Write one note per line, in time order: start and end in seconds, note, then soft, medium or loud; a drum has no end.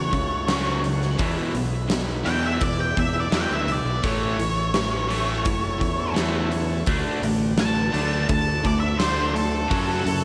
0.00 0.11 E2 medium
0.00 1.17 A3 medium
0.00 1.16 C#4 medium
0.00 1.17 F#4 medium
0.00 0.80 C#5 medium
0.11 1.15 C#2 medium
0.11 0.44 F#2 medium
0.11 0.44 C#3 medium
0.11 kick medium
0.11 open hi-hat soft
0.47 0.81 F#2 medium
0.47 0.81 C#3 medium
0.47 0.82 F#3 loud
0.47 snare loud
0.47 open hi-hat medium
0.83 1.15 F#2 medium
0.83 1.15 C#3 medium
0.83 open hi-hat medium
1.02 snare soft
1.18 1.52 E2 medium
1.18 1.36 E2 medium
1.18 1.52 B2 medium
1.18 1.52 E3 loud
1.18 4.01 G#3 medium
1.18 4.01 E4 medium
1.18 4.01 B4 medium
1.18 kick loud
1.18 open hi-hat medium
1.53 2.21 B1 medium
1.53 1.86 E2 medium
1.53 1.86 B2 medium
1.53 open hi-hat medium
1.88 2.21 E2 medium
1.88 2.21 B2 medium
1.88 snare loud
1.88 open hi-hat medium
1.92 2.23 E2 medium
1.92 2.23 B2 medium
2.23 2.58 E2 medium
2.23 2.59 E2 medium
2.23 2.58 B2 medium
2.23 2.58 E3 medium
2.23 2.43 G5 loud
2.23 open hi-hat medium
2.46 2.62 E5 medium
2.60 2.92 E2 medium
2.60 2.94 E2 medium
2.60 2.93 B2 medium
2.60 2.79 D5 medium
2.60 kick loud
2.60 open hi-hat medium
2.80 2.97 G5 medium
2.97 3.29 E2 medium
2.97 3.30 E2 medium
2.97 3.29 B2 medium
2.97 3.15 E5 medium
2.97 kick medium
2.97 open hi-hat medium
3.20 3.34 D5 medium
3.32 3.65 E2 medium
3.32 3.48 E2 medium
3.32 3.66 B2 medium
3.32 3.66 E3 medium
3.32 snare loud
3.32 open hi-hat medium
3.37 3.52 G5 medium
3.51 3.66 D2 medium
3.51 3.72 E5 medium
3.67 3.83 C#2 medium
3.67 3.99 E2 medium
3.67 3.99 B2 medium
3.67 open hi-hat medium
3.72 4.04 D5 medium
3.85 4.01 B1 medium
4.02 4.36 A1 loud
4.02 4.36 A2 medium
4.02 4.36 E3 medium
4.02 6.83 A3 medium
4.02 4.36 A3 medium
4.02 6.83 E4 medium
4.02 6.83 C#5 medium
4.02 6.12 C#5 loud
4.02 kick loud
4.02 open hi-hat medium
4.39 5.46 A1 medium
4.39 4.70 A2 medium
4.39 4.70 E3 medium
4.39 open hi-hat medium
4.74 5.06 A2 medium
4.74 5.06 E3 medium
4.74 snare loud
4.74 open hi-hat medium
5.08 5.42 A2 medium
5.08 5.42 E3 medium
5.08 5.42 A3 medium
5.08 open hi-hat medium
5.44 5.78 F#1 medium
5.44 5.76 A2 medium
5.44 5.76 E3 medium
5.44 kick loud
5.44 open hi-hat medium
5.78 6.83 E2 medium
5.78 6.11 A2 medium
5.78 6.11 E3 medium
5.78 kick medium
5.78 open hi-hat medium
6.14 6.48 A2 medium
6.14 6.48 E3 medium
6.14 6.48 A3 medium
6.14 snare loud
6.14 open hi-hat medium
6.50 6.82 A2 medium
6.50 6.83 E3 medium
6.50 open hi-hat medium
6.86 7.03 D2 medium
6.86 7.20 D3 medium
6.86 7.20 A3 medium
6.86 7.20 D4 medium
6.86 9.68 F#4 medium
6.86 9.69 D5 medium
6.86 kick loud
6.86 open hi-hat medium
6.91 9.67 A3 medium
7.21 7.89 A1 medium
7.21 7.53 D3 medium
7.21 7.54 A3 medium
7.21 open hi-hat medium
7.57 7.89 D3 medium
7.57 7.89 A3 medium
7.57 8.28 A5 loud
7.57 snare loud
7.57 open hi-hat medium
7.92 8.26 D2 medium
7.92 8.26 D3 medium
7.92 8.26 A3 medium
7.92 8.26 D4 medium
7.92 open hi-hat medium
8.29 8.62 D2 medium
8.29 8.60 D3 medium
8.29 8.60 A3 medium
8.29 8.63 A5 loud
8.29 kick loud
8.29 open hi-hat medium
8.63 9.67 D2 medium
8.63 8.95 D3 medium
8.63 8.96 A3 medium
8.63 8.80 D5 medium
8.63 kick medium
8.63 open hi-hat medium
8.80 8.98 E5 medium
8.99 9.32 D3 medium
8.99 9.32 A3 medium
8.99 9.33 D4 loud
8.99 9.33 C5 loud
8.99 snare loud
8.99 open hi-hat medium
9.34 9.66 D3 medium
9.34 9.66 A3 medium
9.34 10.24 A4 loud
9.34 open hi-hat medium
9.68 10.02 F#2 medium
9.68 10.03 F#2 loud
9.68 10.03 C#3 medium
9.68 10.03 F#3 loud
9.68 10.24 A3 medium
9.68 10.24 F#4 medium
9.68 10.24 C#5 medium
9.68 kick loud
9.68 open hi-hat medium
10.04 10.24 F#2 medium
10.04 10.24 C#3 medium
10.04 open hi-hat medium